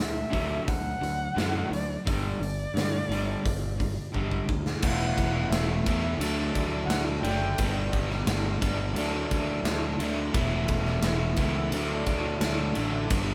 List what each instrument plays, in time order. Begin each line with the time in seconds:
Already playing: fingered electric bass D2, overdriven electric guitar D3 F#3
0.00 erhu E5
0.29 overdriven electric guitar D3 F#3 A3
0.33 fingered electric bass D2, kick, open hi-hat
0.66 fingered electric bass D2, overdriven electric guitar D3 F#3, erhu F#5, kick, open hi-hat
1.00 fingered electric bass D2, overdriven electric guitar D3 F#3, open hi-hat
1.34 fingered electric bass F#2, overdriven electric guitar D3 F#3 A3
1.38 snare, open hi-hat
1.70 fingered electric bass D2, overdriven electric guitar D3 F#3, open hi-hat
1.74 erhu D5
2.04 fingered electric bass G1, overdriven electric guitar G2 D3 G3, erhu D5, kick, open hi-hat
2.40 fingered electric bass G1, overdriven electric guitar G2 D3, open hi-hat
2.74 fingered electric bass G2, overdriven electric guitar G2 D3, snare, open hi-hat
3.09 fingered electric bass G1, overdriven electric guitar G2 D3 G3, open hi-hat
3.42 overdriven electric guitar G2 D3, kick, open hi-hat
3.46 fingered electric bass G1
3.78 overdriven electric guitar G2 D3, kick, open hi-hat
4.12 fingered electric bass G1, overdriven electric guitar G2 D3 G3, kick
4.31 kick
4.47 fingered electric bass D2, overdriven electric guitar G2 D3, kick
4.66 snare
4.80 fingered electric bass E1, overdriven electric guitar E3 A3 B3 E4, erhu F#5, kick, crash
5.18 fingered electric bass E1, kick, ride
5.32 overdriven electric guitar A3 B3 E4
5.49 fingered electric bass E1, overdriven electric guitar E3 A3 B3, erhu E5, snare, ride
5.53 overdriven electric guitar E4
5.84 fingered electric bass E2, overdriven electric guitar E3 A3 B3 E4, kick, ride
5.90 overdriven electric guitar E3
6.02 muted overdriven electric guitar stroke
6.18 fingered electric bass D2, overdriven electric guitar D3 F#3 A3 D4, erhu D5, ride
6.37 overdriven electric guitar F#3 A3 D4
6.53 fingered electric bass D2, overdriven electric guitar D3 F#3 A3 D4, kick, ride
6.72 overdriven electric guitar F#3 A3 D4
6.86 fingered electric bass D2, overdriven electric guitar D3 F#3, erhu F#5, ride
6.90 overdriven electric guitar A3 D4, snare
7.21 fingered electric bass F#1, overdriven electric guitar D3 F#3 A3, erhu G5, ride
7.27 overdriven electric guitar D3 D4
7.40 muted overdriven electric guitar stroke
7.57 fingered electric bass G1, overdriven electric guitar G2 D3 G3 B3 D4, kick, ride
7.93 fingered electric bass G1, kick, ride
8.08 overdriven electric guitar G3 B3 D4, snare
8.25 fingered electric bass G1, overdriven electric guitar G2 D3 G3 B3 D4, snare, ride
8.61 fingered electric bass G1, overdriven electric guitar D3 G3 B3 D4, kick, ride
8.65 overdriven electric guitar G2
8.78 muted overdriven electric guitar stroke
8.94 fingered electric bass D2, overdriven electric guitar D3 F#3 A3 D4, ride
9.12 overdriven electric guitar F#3 A3 D4
9.29 fingered electric bass D2, overdriven electric guitar D3 F#3 A3 D4, kick, ride
9.47 overdriven electric guitar F#3 A3 D4
9.63 fingered electric bass D2, overdriven electric guitar D3 F#3, snare, ride
9.67 overdriven electric guitar A3 D4
9.98 fingered electric bass D2, overdriven electric guitar D3 F#3 A3 D4, ride
10.18 muted overdriven electric guitar stroke
10.33 fingered electric bass E1, overdriven electric guitar E3 A3 B3 E4, tonewheel organ B3 E4 A4 B4, kick, ride
10.68 fingered electric bass E1, kick, ride
10.85 overdriven electric guitar A3 B3 E4, snare
11.02 fingered electric bass E1, overdriven electric guitar E3 A3 B3 E4, snare, ride
11.36 fingered electric bass C#2, overdriven electric guitar E3 A3 B3 E4, kick, ride
11.42 overdriven electric guitar E4
11.57 muted overdriven electric guitar stroke
11.72 fingered electric bass D2, overdriven electric guitar D3 F#3 A3 D4, tonewheel organ D4 F#4 A4 D5, ride
11.90 overdriven electric guitar F#3 A3 D4
12.06 fingered electric bass D2, overdriven electric guitar D3 F#3 A3 D4, kick, ride
12.24 overdriven electric guitar F#3 A3 D4
12.40 fingered electric bass D2, overdriven electric guitar D3 F#3 A3 D4, snare, ride
12.75 fingered electric bass A1, overdriven electric guitar D3 F#3 A3 D4, ride
12.94 muted overdriven electric guitar stroke
13.10 fingered electric bass G1, overdriven electric guitar G2 D3 G3 B3, tonewheel organ D4 G4 B4 D5, kick, ride
13.14 overdriven electric guitar D4